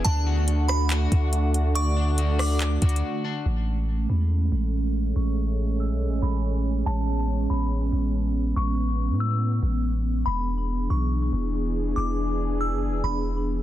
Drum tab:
HH |x-----x-----x--x--x--x--|x-----x--o--x--xxx------|------------------------|------------------------|
CP |------------x-----------|------------x-----------|------------------------|------------------------|
SD |---------r--------------|---------r--------------|------------------------|------------------------|
BD |o--------------o--------|---------------o--------|------------------------|------------------------|

HH |------------------------|------------------------|------------------------|------------------------|
CP |------------------------|------------------------|------------------------|------------------------|
SD |------------------------|------------------------|------------------------|------------------------|
BD |------------------------|------------------------|------------------------|------------------------|